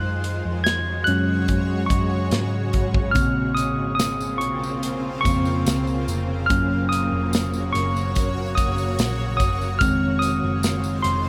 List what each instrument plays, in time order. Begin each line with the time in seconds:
Already playing: picked electric bass F#2, ambient pad C#3 G#3 F#4 C#5, tine electric piano F#6
0.24 closed hi-hat
0.45 picked electric bass F2
0.64 tine electric piano G#6, snare, closed hi-hat
1.04 picked electric bass F#2, tine electric piano F#3 G#3 C#4 F#6, closed hi-hat
1.48 kick, closed hi-hat
1.86 picked electric bass F#2, tine electric piano C#6, kick
1.91 closed hi-hat
2.31 picked electric bass G#2, snare, closed hi-hat
2.73 picked electric bass G#1, kick, closed hi-hat
2.94 kick
3.11 tine electric piano C#3 A#3 C4 F6, closed hi-hat
3.16 picked electric bass A#1, ambient pad A#3 C4 F4, kick, tambourine
3.55 tine electric piano D#6, closed hi-hat, tambourine
3.78 picked electric bass G#1
3.95 tine electric piano D#6
3.99 snare, closed hi-hat, tambourine
4.20 tambourine
4.38 picked electric bass A#1, tine electric piano C#6, closed hi-hat
4.63 tambourine
4.83 closed hi-hat, tambourine
5.21 tine electric piano C#3 A#3 C4 C#6
5.25 picked electric bass F2, kick, closed hi-hat, tambourine
5.45 tambourine
5.66 picked electric bass C#2, snare, closed hi-hat, tambourine
5.87 tambourine
6.08 picked electric bass F1, closed hi-hat, tambourine
6.46 picked electric bass F#1, tine electric piano F#3 A#3 C#4 F6, closed hi-hat, tambourine
6.50 ambient pad F#4 C#5, kick
6.89 tine electric piano D#6, closed hi-hat, tambourine
7.12 picked electric bass F1
7.33 snare, closed hi-hat, tambourine
7.54 tambourine
7.73 picked electric bass F#1, tine electric piano C#6, snare, closed hi-hat
7.96 tambourine
8.15 kick, closed hi-hat, tambourine
8.55 picked electric bass F#1, tine electric piano D#6, kick, closed hi-hat, tambourine
8.78 tambourine
8.99 picked electric bass A#1, snare, closed hi-hat, tambourine
9.37 picked electric bass F#1, tine electric piano D#6, kick, closed hi-hat, tambourine
9.61 tambourine
9.79 picked electric bass F1, tine electric piano D#3 G#3 C4 F6, ambient pad D#3 G#3 F4 C5, kick, closed hi-hat, tambourine
10.19 tine electric piano D#6, closed hi-hat
10.23 tambourine
10.43 picked electric bass F#1
10.63 snare, closed hi-hat, tambourine
10.84 tambourine
11.03 picked electric bass F1, tine electric piano C6, snare, closed hi-hat